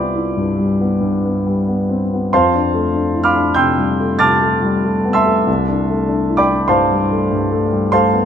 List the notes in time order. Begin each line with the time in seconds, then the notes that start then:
Already playing: C2 B3 E4 F4 G4 C5 D5 E5 G5 B5 D6
0.15 E4
0.37 G2
0.59 G3
0.81 B3
1.00 G2
1.25 B3
1.47 G3
1.68 B3
1.89 C4
2.13 B3
2.33 F2 C5 F5 A5 C6
2.55 D4
2.74 A3
2.94 D4
3.15 E4
3.24 F5 B5 D6 F6
3.35 D4
3.54 C3 G5 C6 E6 G6
3.78 G3
3.99 A3
4.19 C3 A5 D6 F6 A6
4.40 A3
4.62 G3
4.84 A3
5.05 B3
5.13 E5 A5 C6 E6
5.26 A3
5.47 C2
5.69 D4
5.90 A3
6.09 D4
6.30 E4
6.37 D5 G5 B5 D6
6.50 D4
6.68 G2 C5 F5 A5 C6
6.91 G3
7.11 A3
7.32 G2
7.52 A3
7.72 G3
7.92 A3 C5 F5 A5 C6
8.13 B3